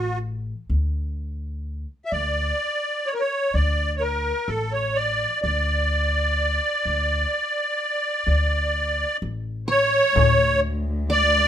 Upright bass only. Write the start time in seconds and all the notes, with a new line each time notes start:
Already playing: A1
0.70 D2
2.12 D2
3.54 D2
4.48 A1
5.44 D2
6.85 D2
8.27 D2
9.22 A1
10.16 D2